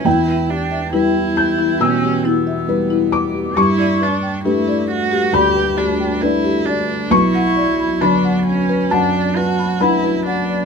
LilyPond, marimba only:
\new Staff \with { instrumentName = "Marimba" } { \time 4/4 \key b \minor \tempo 4 = 68 e'16 b'16 g'16 e''16 e'16 b'16 r16 e'16 b'16 g'16 e'16 e''16 b'16 e'16 b'16 g'16 | g'16 d''16 b'16 g''16 g'16 d''16 r16 g'16 d''16 b'16 g'16 g''16 d''16 g'16 d''16 b'16 | b'16 fis''16 d''16 b''16 b'16 fis''16 r16 b'16 fis''16 d''16 b'16 b''16 fis''16 b'16 fis''16 d''16 | }